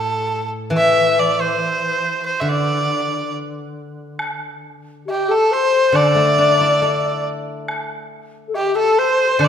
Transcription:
0, 0, Header, 1, 5, 480
1, 0, Start_track
1, 0, Tempo, 868307
1, 397, Time_signature, 2, 2, 24, 8
1, 5241, End_track
2, 0, Start_track
2, 0, Title_t, "Erhu"
2, 0, Program_c, 0, 110
2, 0, Note_on_c, 0, 69, 70
2, 268, Note_off_c, 0, 69, 0
2, 426, Note_on_c, 0, 76, 87
2, 661, Note_on_c, 0, 74, 77
2, 669, Note_off_c, 0, 76, 0
2, 778, Note_on_c, 0, 72, 72
2, 786, Note_off_c, 0, 74, 0
2, 1241, Note_off_c, 0, 72, 0
2, 1249, Note_on_c, 0, 72, 65
2, 1328, Note_on_c, 0, 76, 48
2, 1336, Note_off_c, 0, 72, 0
2, 1375, Note_on_c, 0, 74, 77
2, 1383, Note_off_c, 0, 76, 0
2, 1843, Note_off_c, 0, 74, 0
2, 2819, Note_on_c, 0, 67, 67
2, 2937, Note_on_c, 0, 69, 75
2, 2945, Note_off_c, 0, 67, 0
2, 3059, Note_on_c, 0, 72, 81
2, 3067, Note_off_c, 0, 69, 0
2, 3296, Note_on_c, 0, 74, 82
2, 3305, Note_off_c, 0, 72, 0
2, 4009, Note_off_c, 0, 74, 0
2, 4733, Note_on_c, 0, 67, 70
2, 4838, Note_off_c, 0, 67, 0
2, 4851, Note_on_c, 0, 69, 79
2, 4969, Note_on_c, 0, 72, 79
2, 4977, Note_off_c, 0, 69, 0
2, 5219, Note_on_c, 0, 74, 90
2, 5227, Note_off_c, 0, 72, 0
2, 5241, Note_off_c, 0, 74, 0
2, 5241, End_track
3, 0, Start_track
3, 0, Title_t, "Xiao"
3, 0, Program_c, 1, 77
3, 2799, Note_on_c, 1, 67, 60
3, 2922, Note_on_c, 1, 69, 61
3, 2931, Note_off_c, 1, 67, 0
3, 3046, Note_on_c, 1, 72, 71
3, 3055, Note_off_c, 1, 69, 0
3, 3285, Note_on_c, 1, 74, 81
3, 3293, Note_off_c, 1, 72, 0
3, 4004, Note_off_c, 1, 74, 0
3, 4686, Note_on_c, 1, 69, 44
3, 4721, Note_on_c, 1, 67, 68
3, 4730, Note_off_c, 1, 69, 0
3, 4836, Note_on_c, 1, 69, 73
3, 4845, Note_off_c, 1, 67, 0
3, 4967, Note_on_c, 1, 72, 75
3, 4975, Note_off_c, 1, 69, 0
3, 5195, Note_off_c, 1, 72, 0
3, 5198, Note_on_c, 1, 74, 79
3, 5241, Note_off_c, 1, 74, 0
3, 5241, End_track
4, 0, Start_track
4, 0, Title_t, "Guzheng"
4, 0, Program_c, 2, 107
4, 0, Note_on_c, 2, 45, 50
4, 388, Note_on_c, 2, 52, 50
4, 867, Note_off_c, 2, 45, 0
4, 1333, Note_on_c, 2, 50, 46
4, 1825, Note_off_c, 2, 52, 0
4, 2797, Note_off_c, 2, 50, 0
4, 3274, Note_on_c, 2, 50, 46
4, 3401, Note_on_c, 2, 57, 38
4, 3526, Note_on_c, 2, 62, 42
4, 3652, Note_on_c, 2, 64, 42
4, 3769, Note_on_c, 2, 69, 41
4, 4357, Note_off_c, 2, 57, 0
4, 4479, Note_off_c, 2, 62, 0
4, 4601, Note_off_c, 2, 64, 0
4, 4712, Note_off_c, 2, 50, 0
4, 4720, Note_off_c, 2, 69, 0
4, 5191, Note_on_c, 2, 50, 53
4, 5241, Note_off_c, 2, 50, 0
4, 5241, End_track
5, 0, Start_track
5, 0, Title_t, "Drums"
5, 2317, Note_on_c, 9, 76, 50
5, 2372, Note_off_c, 9, 76, 0
5, 2809, Note_on_c, 9, 77, 38
5, 2864, Note_off_c, 9, 77, 0
5, 3290, Note_on_c, 9, 76, 44
5, 3345, Note_off_c, 9, 76, 0
5, 3765, Note_on_c, 9, 77, 39
5, 3821, Note_off_c, 9, 77, 0
5, 4248, Note_on_c, 9, 76, 51
5, 4303, Note_off_c, 9, 76, 0
5, 4723, Note_on_c, 9, 77, 42
5, 4778, Note_off_c, 9, 77, 0
5, 5199, Note_on_c, 9, 76, 45
5, 5241, Note_off_c, 9, 76, 0
5, 5241, End_track
0, 0, End_of_file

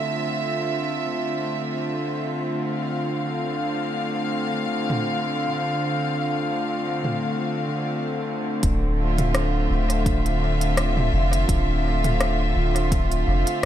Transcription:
0, 0, Header, 1, 4, 480
1, 0, Start_track
1, 0, Key_signature, -1, "minor"
1, 0, Tempo, 714286
1, 40, Time_signature, 4, 2, 24, 8
1, 9173, End_track
2, 0, Start_track
2, 0, Title_t, "String section"
2, 0, Program_c, 0, 48
2, 0, Note_on_c, 0, 50, 71
2, 0, Note_on_c, 0, 57, 53
2, 0, Note_on_c, 0, 60, 59
2, 0, Note_on_c, 0, 65, 64
2, 0, Note_on_c, 0, 76, 67
2, 1825, Note_on_c, 0, 77, 71
2, 1959, Note_off_c, 0, 76, 0
2, 5799, Note_off_c, 0, 65, 0
2, 5800, Note_off_c, 0, 77, 0
2, 6031, Note_on_c, 0, 76, 66
2, 6039, Note_on_c, 0, 65, 82
2, 9173, Note_off_c, 0, 50, 0
2, 9173, Note_off_c, 0, 57, 0
2, 9173, Note_off_c, 0, 60, 0
2, 9173, Note_off_c, 0, 65, 0
2, 9173, Note_off_c, 0, 76, 0
2, 9173, End_track
3, 0, Start_track
3, 0, Title_t, "Sub bass"
3, 0, Program_c, 1, 38
3, 5800, Note_on_c, 1, 26, 101
3, 6499, Note_off_c, 1, 26, 0
3, 6520, Note_on_c, 1, 26, 90
3, 7459, Note_off_c, 1, 26, 0
3, 7479, Note_on_c, 1, 29, 94
3, 7693, Note_off_c, 1, 29, 0
3, 7719, Note_on_c, 1, 26, 96
3, 8419, Note_off_c, 1, 26, 0
3, 8439, Note_on_c, 1, 26, 86
3, 8899, Note_off_c, 1, 26, 0
3, 8920, Note_on_c, 1, 29, 83
3, 9036, Note_off_c, 1, 29, 0
3, 9173, End_track
4, 0, Start_track
4, 0, Title_t, "Drums"
4, 3293, Note_on_c, 9, 45, 65
4, 3360, Note_off_c, 9, 45, 0
4, 4732, Note_on_c, 9, 45, 50
4, 4799, Note_off_c, 9, 45, 0
4, 5799, Note_on_c, 9, 42, 54
4, 5800, Note_on_c, 9, 36, 98
4, 5867, Note_off_c, 9, 36, 0
4, 5867, Note_off_c, 9, 42, 0
4, 6172, Note_on_c, 9, 42, 43
4, 6172, Note_on_c, 9, 45, 80
4, 6239, Note_off_c, 9, 42, 0
4, 6239, Note_off_c, 9, 45, 0
4, 6280, Note_on_c, 9, 37, 78
4, 6280, Note_on_c, 9, 42, 53
4, 6347, Note_off_c, 9, 37, 0
4, 6347, Note_off_c, 9, 42, 0
4, 6652, Note_on_c, 9, 42, 44
4, 6719, Note_off_c, 9, 42, 0
4, 6760, Note_on_c, 9, 36, 101
4, 6762, Note_on_c, 9, 42, 54
4, 6827, Note_off_c, 9, 36, 0
4, 6829, Note_off_c, 9, 42, 0
4, 6894, Note_on_c, 9, 42, 30
4, 6961, Note_off_c, 9, 42, 0
4, 7132, Note_on_c, 9, 42, 42
4, 7200, Note_off_c, 9, 42, 0
4, 7240, Note_on_c, 9, 37, 80
4, 7240, Note_on_c, 9, 42, 56
4, 7308, Note_off_c, 9, 37, 0
4, 7308, Note_off_c, 9, 42, 0
4, 7373, Note_on_c, 9, 45, 81
4, 7440, Note_off_c, 9, 45, 0
4, 7614, Note_on_c, 9, 42, 43
4, 7681, Note_off_c, 9, 42, 0
4, 7720, Note_on_c, 9, 36, 105
4, 7721, Note_on_c, 9, 42, 56
4, 7788, Note_off_c, 9, 36, 0
4, 7788, Note_off_c, 9, 42, 0
4, 8093, Note_on_c, 9, 42, 44
4, 8093, Note_on_c, 9, 45, 78
4, 8161, Note_off_c, 9, 42, 0
4, 8161, Note_off_c, 9, 45, 0
4, 8202, Note_on_c, 9, 37, 77
4, 8202, Note_on_c, 9, 42, 52
4, 8269, Note_off_c, 9, 37, 0
4, 8269, Note_off_c, 9, 42, 0
4, 8573, Note_on_c, 9, 42, 43
4, 8641, Note_off_c, 9, 42, 0
4, 8681, Note_on_c, 9, 36, 109
4, 8681, Note_on_c, 9, 42, 55
4, 8748, Note_off_c, 9, 36, 0
4, 8749, Note_off_c, 9, 42, 0
4, 8814, Note_on_c, 9, 42, 30
4, 8881, Note_off_c, 9, 42, 0
4, 9052, Note_on_c, 9, 42, 43
4, 9119, Note_off_c, 9, 42, 0
4, 9173, End_track
0, 0, End_of_file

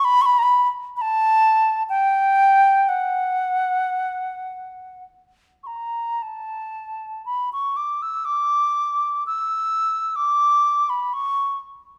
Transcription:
0, 0, Header, 1, 2, 480
1, 0, Start_track
1, 0, Tempo, 911854
1, 16, Time_signature, 3, 2, 24, 8
1, 977, Tempo, 1016949
1, 1457, Tempo, 1077199
1, 2417, Tempo, 1190476
1, 2897, Tempo, 1018676
1, 3857, Tempo, 986842
1, 4337, Tempo, 933126
1, 5749, End_track
2, 0, Start_track
2, 0, Title_t, "Flute"
2, 0, Program_c, 0, 73
2, 24, Note_on_c, 0, 83, 120
2, 113, Note_on_c, 0, 85, 110
2, 118, Note_off_c, 0, 83, 0
2, 136, Note_on_c, 0, 83, 120
2, 141, Note_off_c, 0, 85, 0
2, 203, Note_on_c, 0, 82, 110
2, 208, Note_off_c, 0, 83, 0
2, 225, Note_on_c, 0, 83, 120
2, 230, Note_off_c, 0, 82, 0
2, 357, Note_off_c, 0, 83, 0
2, 508, Note_on_c, 0, 83, 107
2, 534, Note_on_c, 0, 81, 116
2, 539, Note_off_c, 0, 83, 0
2, 964, Note_off_c, 0, 81, 0
2, 994, Note_on_c, 0, 79, 113
2, 1463, Note_on_c, 0, 78, 90
2, 1470, Note_off_c, 0, 79, 0
2, 2419, Note_off_c, 0, 78, 0
2, 2661, Note_on_c, 0, 85, 54
2, 2675, Note_on_c, 0, 82, 59
2, 2679, Note_off_c, 0, 85, 0
2, 2900, Note_on_c, 0, 81, 77
2, 2907, Note_off_c, 0, 82, 0
2, 3383, Note_off_c, 0, 81, 0
2, 3386, Note_on_c, 0, 83, 75
2, 3500, Note_off_c, 0, 83, 0
2, 3514, Note_on_c, 0, 85, 75
2, 3626, Note_on_c, 0, 86, 72
2, 3633, Note_off_c, 0, 85, 0
2, 3747, Note_on_c, 0, 88, 77
2, 3754, Note_off_c, 0, 86, 0
2, 3854, Note_on_c, 0, 86, 91
2, 3861, Note_off_c, 0, 88, 0
2, 4335, Note_off_c, 0, 86, 0
2, 4348, Note_on_c, 0, 88, 93
2, 4807, Note_on_c, 0, 86, 97
2, 4815, Note_off_c, 0, 88, 0
2, 5186, Note_on_c, 0, 83, 80
2, 5194, Note_off_c, 0, 86, 0
2, 5310, Note_on_c, 0, 85, 83
2, 5318, Note_off_c, 0, 83, 0
2, 5547, Note_off_c, 0, 85, 0
2, 5749, End_track
0, 0, End_of_file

